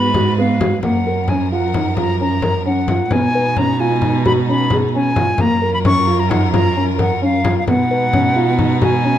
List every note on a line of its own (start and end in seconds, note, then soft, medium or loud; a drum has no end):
0.00 0.80 G#2 medium
0.00 0.82 G#3 medium
0.00 0.81 F#4 medium
0.00 0.82 B4 medium
0.00 0.38 B5 medium
0.14 0.28 F#4 medium
0.14 frame drum medium
0.38 0.50 B3 medium
0.38 0.80 F5 medium
0.61 0.73 F#4 medium
0.61 frame drum medium
0.82 3.11 F#2 medium
0.82 3.09 F3 medium
0.82 3.09 F#3 medium
0.82 0.95 A#3 medium
0.82 3.09 A#4 medium
0.82 1.31 F#5 medium
0.82 frame drum medium
1.05 1.18 A#4 medium
1.05 frame drum soft
1.28 1.42 C#4 medium
1.28 1.51 G#5 medium
1.28 frame drum medium
1.52 1.64 F4 medium
1.52 1.94 F#5 medium
1.74 1.87 D#4 medium
1.74 frame drum medium
1.97 2.09 F4 medium
1.97 2.19 A#5 medium
1.97 frame drum medium
2.20 2.32 C#4 medium
2.20 2.63 A#5 medium
2.20 frame drum soft
2.42 2.55 A#4 medium
2.42 frame drum medium
2.66 2.77 C#4 medium
2.66 3.14 F#5 medium
2.88 3.01 F4 medium
2.88 frame drum medium
3.09 5.40 B2 medium
3.09 5.36 G#3 medium
3.09 5.36 B3 medium
3.09 3.24 B3 medium
3.09 5.36 D#4 medium
3.09 3.59 G#5 medium
3.09 frame drum medium
3.34 3.47 B4 medium
3.34 frame drum soft
3.56 3.69 C#4 medium
3.56 3.82 A#5 medium
3.56 frame drum medium
3.80 3.92 F4 medium
3.80 4.25 G#5 medium
4.02 4.15 D#4 medium
4.02 frame drum medium
4.26 4.37 F#4 medium
4.26 4.32 B5 loud
4.26 frame drum medium
4.49 4.60 C#4 medium
4.49 4.75 B5 medium
4.70 4.84 G#4 medium
4.70 frame drum medium
4.95 5.07 C#4 medium
4.95 5.42 G#5 medium
5.16 5.29 F4 medium
5.16 frame drum medium
5.38 7.69 F#2 medium
5.38 7.65 F#3 medium
5.38 5.52 A#3 medium
5.38 7.65 F4 medium
5.38 7.65 A#4 medium
5.38 5.73 A#5 loud
5.38 frame drum medium
5.62 5.74 A#4 medium
5.62 frame drum soft
5.74 5.79 B5 medium
5.85 5.97 C#4 medium
5.85 6.21 C#6 loud
5.85 frame drum medium
6.07 6.19 F4 medium
6.20 6.31 A#5 medium
6.30 6.42 D#4 medium
6.30 6.52 F#5 medium
6.30 frame drum medium
6.53 6.65 F4 medium
6.53 6.85 A#5 loud
6.53 frame drum medium
6.76 6.88 C#4 medium
6.76 frame drum soft
6.98 7.10 A#4 medium
6.98 7.21 F#5 medium
6.98 frame drum medium
7.22 7.33 C#4 medium
7.22 7.55 F5 medium
7.45 7.57 F4 medium
7.45 frame drum medium
7.58 7.68 F5 medium
7.65 9.18 B2 medium
7.65 9.18 G#3 medium
7.65 9.18 B3 medium
7.65 7.79 B3 medium
7.65 9.18 D#4 medium
7.65 8.78 F#5 loud
7.65 frame drum medium
7.91 8.02 B4 medium
7.91 frame drum soft
8.13 8.25 C#4 medium
8.13 frame drum medium
8.36 8.48 F4 medium
8.59 8.71 D#4 medium
8.59 frame drum medium
8.82 8.93 F#4 medium
8.82 9.18 G#5 loud
8.82 frame drum medium
9.04 9.16 C#4 medium